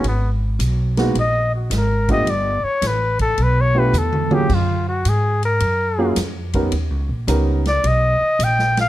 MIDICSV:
0, 0, Header, 1, 6, 480
1, 0, Start_track
1, 0, Key_signature, 6, "major"
1, 0, Tempo, 556586
1, 39, Time_signature, 4, 2, 24, 8
1, 7664, End_track
2, 0, Start_track
2, 0, Title_t, "Trumpet"
2, 0, Program_c, 0, 56
2, 70, Note_on_c, 0, 59, 66
2, 254, Note_off_c, 0, 59, 0
2, 1035, Note_on_c, 0, 75, 95
2, 1317, Note_off_c, 0, 75, 0
2, 1339, Note_on_c, 0, 66, 53
2, 1477, Note_off_c, 0, 66, 0
2, 1520, Note_on_c, 0, 70, 83
2, 1821, Note_off_c, 0, 70, 0
2, 1825, Note_on_c, 0, 75, 101
2, 1982, Note_on_c, 0, 74, 86
2, 1995, Note_off_c, 0, 75, 0
2, 2278, Note_on_c, 0, 73, 86
2, 2291, Note_off_c, 0, 74, 0
2, 2476, Note_on_c, 0, 71, 78
2, 2489, Note_off_c, 0, 73, 0
2, 2765, Note_off_c, 0, 71, 0
2, 2770, Note_on_c, 0, 69, 87
2, 2957, Note_on_c, 0, 71, 78
2, 2970, Note_off_c, 0, 69, 0
2, 3114, Note_on_c, 0, 73, 83
2, 3127, Note_off_c, 0, 71, 0
2, 3268, Note_on_c, 0, 71, 75
2, 3281, Note_off_c, 0, 73, 0
2, 3433, Note_on_c, 0, 69, 73
2, 3446, Note_off_c, 0, 71, 0
2, 3743, Note_on_c, 0, 67, 82
2, 3756, Note_off_c, 0, 69, 0
2, 3919, Note_on_c, 0, 65, 76
2, 3932, Note_off_c, 0, 67, 0
2, 4208, Note_off_c, 0, 65, 0
2, 4213, Note_on_c, 0, 66, 78
2, 4390, Note_on_c, 0, 68, 83
2, 4403, Note_off_c, 0, 66, 0
2, 4696, Note_off_c, 0, 68, 0
2, 4704, Note_on_c, 0, 70, 85
2, 5294, Note_off_c, 0, 70, 0
2, 6623, Note_on_c, 0, 74, 90
2, 6790, Note_on_c, 0, 75, 94
2, 6803, Note_off_c, 0, 74, 0
2, 7276, Note_on_c, 0, 79, 99
2, 7289, Note_off_c, 0, 75, 0
2, 7581, Note_off_c, 0, 79, 0
2, 7592, Note_on_c, 0, 77, 101
2, 7664, Note_off_c, 0, 77, 0
2, 7664, End_track
3, 0, Start_track
3, 0, Title_t, "Grand piano"
3, 0, Program_c, 1, 0
3, 838, Note_on_c, 1, 56, 72
3, 839, Note_on_c, 1, 58, 60
3, 844, Note_on_c, 1, 59, 62
3, 848, Note_on_c, 1, 63, 60
3, 854, Note_on_c, 1, 66, 75
3, 980, Note_off_c, 1, 56, 0
3, 981, Note_off_c, 1, 58, 0
3, 983, Note_off_c, 1, 59, 0
3, 985, Note_off_c, 1, 63, 0
3, 988, Note_off_c, 1, 66, 0
3, 1801, Note_on_c, 1, 59, 57
3, 1803, Note_on_c, 1, 57, 62
3, 1810, Note_on_c, 1, 62, 60
3, 1811, Note_on_c, 1, 65, 58
3, 1819, Note_on_c, 1, 67, 71
3, 1941, Note_off_c, 1, 59, 0
3, 1942, Note_off_c, 1, 57, 0
3, 1946, Note_off_c, 1, 62, 0
3, 1946, Note_off_c, 1, 65, 0
3, 1950, Note_off_c, 1, 67, 0
3, 3231, Note_on_c, 1, 57, 65
3, 3235, Note_on_c, 1, 59, 58
3, 3236, Note_on_c, 1, 62, 55
3, 3240, Note_on_c, 1, 65, 55
3, 3241, Note_on_c, 1, 67, 67
3, 3376, Note_off_c, 1, 57, 0
3, 3378, Note_off_c, 1, 59, 0
3, 3378, Note_off_c, 1, 62, 0
3, 3380, Note_off_c, 1, 65, 0
3, 3381, Note_off_c, 1, 67, 0
3, 3715, Note_on_c, 1, 58, 59
3, 3717, Note_on_c, 1, 61, 61
3, 3718, Note_on_c, 1, 54, 63
3, 3722, Note_on_c, 1, 65, 58
3, 3728, Note_on_c, 1, 68, 70
3, 3858, Note_off_c, 1, 58, 0
3, 3859, Note_off_c, 1, 54, 0
3, 3859, Note_off_c, 1, 61, 0
3, 3861, Note_off_c, 1, 65, 0
3, 3864, Note_off_c, 1, 68, 0
3, 5160, Note_on_c, 1, 54, 65
3, 5161, Note_on_c, 1, 58, 63
3, 5163, Note_on_c, 1, 61, 62
3, 5164, Note_on_c, 1, 65, 60
3, 5170, Note_on_c, 1, 68, 75
3, 5301, Note_off_c, 1, 54, 0
3, 5302, Note_off_c, 1, 58, 0
3, 5302, Note_off_c, 1, 61, 0
3, 5303, Note_off_c, 1, 65, 0
3, 5306, Note_off_c, 1, 68, 0
3, 5643, Note_on_c, 1, 55, 57
3, 5645, Note_on_c, 1, 59, 55
3, 5646, Note_on_c, 1, 61, 50
3, 5651, Note_on_c, 1, 63, 55
3, 5651, Note_on_c, 1, 70, 65
3, 5782, Note_off_c, 1, 55, 0
3, 5784, Note_off_c, 1, 59, 0
3, 5784, Note_off_c, 1, 61, 0
3, 5787, Note_off_c, 1, 63, 0
3, 5787, Note_off_c, 1, 70, 0
3, 6274, Note_on_c, 1, 55, 62
3, 6278, Note_on_c, 1, 59, 57
3, 6278, Note_on_c, 1, 61, 58
3, 6282, Note_on_c, 1, 63, 60
3, 6286, Note_on_c, 1, 70, 72
3, 6567, Note_off_c, 1, 55, 0
3, 6569, Note_off_c, 1, 59, 0
3, 6569, Note_off_c, 1, 61, 0
3, 6571, Note_off_c, 1, 63, 0
3, 6573, Note_off_c, 1, 70, 0
3, 7664, End_track
4, 0, Start_track
4, 0, Title_t, "Upright bass"
4, 0, Program_c, 2, 32
4, 28, Note_on_c, 2, 32, 78
4, 498, Note_off_c, 2, 32, 0
4, 510, Note_on_c, 2, 35, 86
4, 979, Note_off_c, 2, 35, 0
4, 990, Note_on_c, 2, 34, 82
4, 1459, Note_off_c, 2, 34, 0
4, 1467, Note_on_c, 2, 32, 82
4, 1937, Note_off_c, 2, 32, 0
4, 1943, Note_on_c, 2, 31, 80
4, 2249, Note_off_c, 2, 31, 0
4, 2429, Note_on_c, 2, 33, 84
4, 2897, Note_off_c, 2, 33, 0
4, 2913, Note_on_c, 2, 35, 82
4, 3379, Note_off_c, 2, 35, 0
4, 3390, Note_on_c, 2, 40, 84
4, 3858, Note_off_c, 2, 40, 0
4, 3878, Note_on_c, 2, 42, 78
4, 4342, Note_off_c, 2, 42, 0
4, 4358, Note_on_c, 2, 44, 79
4, 4822, Note_off_c, 2, 44, 0
4, 4835, Note_on_c, 2, 42, 78
4, 5301, Note_off_c, 2, 42, 0
4, 5314, Note_on_c, 2, 41, 82
4, 5781, Note_off_c, 2, 41, 0
4, 5793, Note_on_c, 2, 39, 79
4, 5952, Note_off_c, 2, 39, 0
4, 5952, Note_on_c, 2, 37, 48
4, 6109, Note_off_c, 2, 37, 0
4, 6114, Note_on_c, 2, 34, 58
4, 6264, Note_off_c, 2, 34, 0
4, 6272, Note_on_c, 2, 37, 79
4, 6741, Note_off_c, 2, 37, 0
4, 6759, Note_on_c, 2, 35, 79
4, 7059, Note_off_c, 2, 35, 0
4, 7236, Note_on_c, 2, 34, 85
4, 7664, Note_off_c, 2, 34, 0
4, 7664, End_track
5, 0, Start_track
5, 0, Title_t, "Muted upright bass strokes"
5, 2273, Note_on_c, 9, 29, 35
5, 2360, Note_off_c, 9, 29, 0
5, 7078, Note_on_c, 9, 29, 42
5, 7164, Note_off_c, 9, 29, 0
5, 7664, End_track
6, 0, Start_track
6, 0, Title_t, "Drums"
6, 35, Note_on_c, 9, 51, 57
6, 122, Note_off_c, 9, 51, 0
6, 515, Note_on_c, 9, 44, 64
6, 515, Note_on_c, 9, 51, 65
6, 601, Note_off_c, 9, 44, 0
6, 601, Note_off_c, 9, 51, 0
6, 838, Note_on_c, 9, 51, 43
6, 841, Note_on_c, 9, 38, 45
6, 924, Note_off_c, 9, 51, 0
6, 928, Note_off_c, 9, 38, 0
6, 994, Note_on_c, 9, 51, 58
6, 1080, Note_off_c, 9, 51, 0
6, 1473, Note_on_c, 9, 44, 60
6, 1473, Note_on_c, 9, 51, 64
6, 1476, Note_on_c, 9, 38, 39
6, 1559, Note_off_c, 9, 44, 0
6, 1559, Note_off_c, 9, 51, 0
6, 1562, Note_off_c, 9, 38, 0
6, 1799, Note_on_c, 9, 36, 54
6, 1799, Note_on_c, 9, 51, 46
6, 1885, Note_off_c, 9, 36, 0
6, 1885, Note_off_c, 9, 51, 0
6, 1957, Note_on_c, 9, 51, 53
6, 2044, Note_off_c, 9, 51, 0
6, 2431, Note_on_c, 9, 44, 57
6, 2431, Note_on_c, 9, 51, 68
6, 2435, Note_on_c, 9, 38, 38
6, 2518, Note_off_c, 9, 44, 0
6, 2518, Note_off_c, 9, 51, 0
6, 2521, Note_off_c, 9, 38, 0
6, 2752, Note_on_c, 9, 51, 44
6, 2758, Note_on_c, 9, 36, 54
6, 2838, Note_off_c, 9, 51, 0
6, 2844, Note_off_c, 9, 36, 0
6, 2911, Note_on_c, 9, 51, 54
6, 2997, Note_off_c, 9, 51, 0
6, 3391, Note_on_c, 9, 44, 66
6, 3395, Note_on_c, 9, 47, 45
6, 3478, Note_off_c, 9, 44, 0
6, 3481, Note_off_c, 9, 47, 0
6, 3558, Note_on_c, 9, 47, 62
6, 3644, Note_off_c, 9, 47, 0
6, 3716, Note_on_c, 9, 47, 81
6, 3802, Note_off_c, 9, 47, 0
6, 3877, Note_on_c, 9, 49, 67
6, 3878, Note_on_c, 9, 36, 70
6, 3964, Note_off_c, 9, 36, 0
6, 3964, Note_off_c, 9, 49, 0
6, 4356, Note_on_c, 9, 44, 52
6, 4356, Note_on_c, 9, 51, 67
6, 4442, Note_off_c, 9, 44, 0
6, 4442, Note_off_c, 9, 51, 0
6, 4680, Note_on_c, 9, 51, 45
6, 4766, Note_off_c, 9, 51, 0
6, 4832, Note_on_c, 9, 51, 61
6, 4918, Note_off_c, 9, 51, 0
6, 5312, Note_on_c, 9, 44, 53
6, 5312, Note_on_c, 9, 51, 72
6, 5316, Note_on_c, 9, 38, 38
6, 5398, Note_off_c, 9, 44, 0
6, 5398, Note_off_c, 9, 51, 0
6, 5402, Note_off_c, 9, 38, 0
6, 5635, Note_on_c, 9, 51, 48
6, 5641, Note_on_c, 9, 36, 56
6, 5721, Note_off_c, 9, 51, 0
6, 5727, Note_off_c, 9, 36, 0
6, 5792, Note_on_c, 9, 51, 62
6, 5878, Note_off_c, 9, 51, 0
6, 6277, Note_on_c, 9, 44, 61
6, 6277, Note_on_c, 9, 51, 68
6, 6363, Note_off_c, 9, 44, 0
6, 6363, Note_off_c, 9, 51, 0
6, 6601, Note_on_c, 9, 51, 44
6, 6604, Note_on_c, 9, 38, 35
6, 6687, Note_off_c, 9, 51, 0
6, 6691, Note_off_c, 9, 38, 0
6, 6760, Note_on_c, 9, 51, 64
6, 6846, Note_off_c, 9, 51, 0
6, 7240, Note_on_c, 9, 44, 56
6, 7240, Note_on_c, 9, 51, 68
6, 7327, Note_off_c, 9, 44, 0
6, 7327, Note_off_c, 9, 51, 0
6, 7407, Note_on_c, 9, 38, 31
6, 7493, Note_off_c, 9, 38, 0
6, 7565, Note_on_c, 9, 38, 46
6, 7565, Note_on_c, 9, 51, 49
6, 7651, Note_off_c, 9, 38, 0
6, 7651, Note_off_c, 9, 51, 0
6, 7664, End_track
0, 0, End_of_file